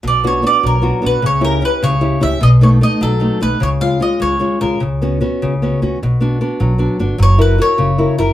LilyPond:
<<
  \new Staff \with { instrumentName = "Mandolin" } { \time 6/8 \key b \minor \tempo 4. = 101 d''8 cis''8 d''8 ais'4 b'8 | cis''8 ais'8 b'8 cis''4 e''8 | dis''8 cis''8 dis''8 a'4 b'8 | cis''8 eis''8 dis''8 cis''4 ais'8 |
r2. | r2. | cis''8 b'8 cis''4. ais'8 | }
  \new Staff \with { instrumentName = "Nylon-string guitar" } { \time 6/8 \key b \minor b,8 <b d' fis'>8 <b d' fis'>8 fis8 <b d' fis'>8 <b d' fis'>8 | cis8 <cis' e' g'>8 <cis' e' g'>8 cis8 <cis' e' g'>8 <cis' e' g'>8 | b,8 <a b dis'>8 <a b dis'>8 fis8 <a b dis'>8 <a b dis'>8 | cis8 <gis cis' eis'>8 <gis cis' eis'>8 gis8 <gis cis' eis'>8 <gis cis' eis'>8 |
cis8 <b cis' fis'>8 <b cis' fis'>8 cis8 <b cis' fis'>8 <b cis' fis'>8 | b,8 <b d' fis'>8 <b d' fis'>8 fis8 <b d' fis'>8 <b d' fis'>8 | fis8 <e' fis' ais'>8 <e' fis' ais'>8 cis8 <e' fis' ais'>8 <e' fis' ais'>8 | }
  \new Staff \with { instrumentName = "Upright bass" } { \clef bass \time 6/8 \key b \minor b,,4. b,,4 b,,8 | cis,4. cis,4 cis,8 | b,,4. b,,4 b,,8 | cis,4. cis,4 cis,8 |
cis,4. cis,4 cis,8 | b,,4. b,,4 g,,8 | fis,,4. fis,,4 fis,,8 | }
>>